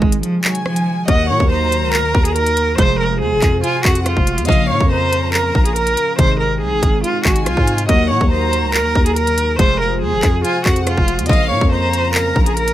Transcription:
Already playing: C3 D#3 G#3 D#4 G#4
0.02 G#1, kick
0.12 closed hi-hat
0.23 F3, closed hi-hat
0.44 F#3 G#5, clap
0.55 closed hi-hat
0.66 F3, cross-stick
0.76 closed hi-hat
1.07 D#2 D#3 F#3 A#3 D#4 F#4 A#4 D#5 F#5, kick, closed hi-hat
1.29 A#2 C#5
1.40 D#2, kick
1.51 C5 A#5
1.72 closed hi-hat
1.83 C#2
1.93 A#4, clap
1.99 D#2
2.15 D#2, kick
2.25 G#4, closed hi-hat
2.36 A#4, closed hi-hat
2.46 closed hi-hat
2.57 closed hi-hat
2.77 F1 C3 F3 G#3 F4 G#4 C5, kick, closed hi-hat
3.00 A#4
3.21 F2 G#4
3.31 F1
3.42 F2, kick, clap, closed hi-hat
3.63 F4 G#5, closed hi-hat
3.85 F2 F#4 F#5, kick, clap
3.95 closed hi-hat
4.06 F4, cross-stick, closed hi-hat
4.17 F1, kick
4.27 closed hi-hat
4.38 F2, closed hi-hat
4.45 A#1 C#3 F3 A#3 C#4 F4 D#5 F5, kick, closed hi-hat
4.49 A#4, closed hi-hat
4.70 A#2 C#5
4.80 F2, kick
4.91 C5 A#5
5.13 closed hi-hat
5.34 A#4, clap
5.55 A#1, kick
5.65 G#4, closed hi-hat
5.76 A#4, closed hi-hat
5.87 closed hi-hat
5.97 closed hi-hat
6.17 G#1 C3 D#3 G#3 C4 D#4 G#4 C5, kick, closed hi-hat
6.40 A#4
6.61 C2 G#4
6.72 G#1
6.83 G#1, kick, closed hi-hat
7.04 F4, closed hi-hat
7.25 G#1 F#4 G#5, kick, clap
7.36 closed hi-hat
7.46 C2 F4, cross-stick, closed hi-hat
7.57 G#2, kick
7.67 closed hi-hat
7.78 closed hi-hat
7.88 D#2 D#3 F#3 A#3 F#4 A#4 D#5 F#5, kick, closed hi-hat
8.10 A#2 C#5
8.21 D#2, kick
8.31 C5 A#5
8.53 closed hi-hat
8.63 C#2
8.74 A#4, clap
8.79 D#2
8.95 D#2, kick
9.06 G#4, closed hi-hat
9.16 A#4, closed hi-hat
9.27 closed hi-hat
9.38 closed hi-hat
9.58 F1 C3 F3 G#3 F4 G#4 C5, kick, closed hi-hat
9.80 A#4
10.02 F2 G#4
10.12 F1
10.23 F2, kick, clap, closed hi-hat
10.44 F4 G#5, closed hi-hat
10.65 F2 F#4 F#5, kick, clap
10.76 closed hi-hat
10.87 F4, cross-stick, closed hi-hat
10.97 F1, kick
11.08 closed hi-hat
11.19 F2, closed hi-hat
11.26 A#1 C#3 F3 A#3 C#4 F4 D#5 F5, kick, closed hi-hat
11.30 A#4, closed hi-hat
11.51 A#2 C#5
11.61 F2, kick
11.72 C5 A#5
11.93 closed hi-hat
12.14 A#4, clap
12.36 A#1, kick
12.46 G#4, closed hi-hat
12.57 A#4, closed hi-hat
12.68 closed hi-hat

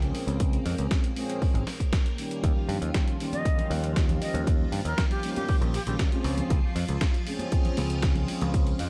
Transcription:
Already playing: C#2 A#3 G5
0.01 F3 G#3 C4 C#4 G#4, closed hi-hat
0.14 muted picked electric bass stroke, open hi-hat
0.27 C#2, closed hi-hat
0.40 kick, closed hi-hat
0.53 closed hi-hat
0.66 F2, open hi-hat
0.78 C#2, closed hi-hat
0.91 kick, snare, closed hi-hat
1.04 closed hi-hat
1.16 F3 G#3 C4 C#4 G#4, open hi-hat
1.30 closed hi-hat
1.42 kick, open hi-hat
1.54 G#1, closed hi-hat
1.67 snare, open hi-hat
1.80 kick, closed hi-hat
1.93 kick, snare, closed hi-hat
2.06 closed hi-hat
2.17 D#3 G3 A#3 C#4 G4, open hi-hat
2.31 closed hi-hat
2.44 D#2 F3 F4, kick, closed hi-hat
2.69 G2, open hi-hat
2.82 D#2, closed hi-hat
2.94 kick, snare, closed hi-hat
3.08 closed hi-hat
3.20 D#3 G3 A#3 C#4 G4, open hi-hat
3.32 D#5, closed hi-hat, high conga
3.44 D#3 G3, kick, closed hi-hat
3.58 closed hi-hat, low conga
3.70 D#2, open hi-hat, high conga
3.84 closed hi-hat
3.96 kick, snare, closed hi-hat
4.08 D#3 G3 A#3 C#4 G4, closed hi-hat, high conga, low conga
4.21 D#5, muted picked electric bass stroke, open hi-hat
4.34 D#2, closed hi-hat, low conga
4.47 kick, closed hi-hat
4.72 G2, open hi-hat
4.85 D#2 A#4, closed hi-hat
4.98 kick, snare, closed hi-hat
5.10 G4, closed hi-hat
5.23 D#3 G3 A#3 C#4 G4, open hi-hat
5.35 G4, closed hi-hat, high conga
5.49 kick, open hi-hat
5.61 A#1, closed hi-hat
5.73 G4, open hi-hat
5.86 A#1 D#3 G3 A#3 C#4 G4, closed hi-hat
5.99 kick, snare, closed hi-hat
6.12 F3 G#3 C4 C#4 G#4, closed hi-hat
6.24 C#2, open hi-hat
6.38 F3 G#3 C4 C#4 G#4, closed hi-hat, high conga, low conga
6.50 C#2, kick, closed hi-hat
6.76 F2, open hi-hat
6.88 C#2, closed hi-hat
7.01 kick, snare, closed hi-hat
7.14 closed hi-hat
7.26 F3 G#3 C4 C#4 G#4, open hi-hat
7.39 closed hi-hat, high conga
7.51 F3 G#3 C4 C#4 G#4, kick, closed hi-hat
7.65 closed hi-hat, low conga
7.77 C#2, open hi-hat, high conga
7.90 closed hi-hat
8.02 kick, snare, closed hi-hat
8.15 F3 G#3 C4 C#4 G#4, closed hi-hat, high conga, low conga
8.28 muted picked electric bass stroke, open hi-hat
8.41 C#2, closed hi-hat, low conga
8.54 kick, closed hi-hat
8.67 closed hi-hat
8.79 F2, open hi-hat

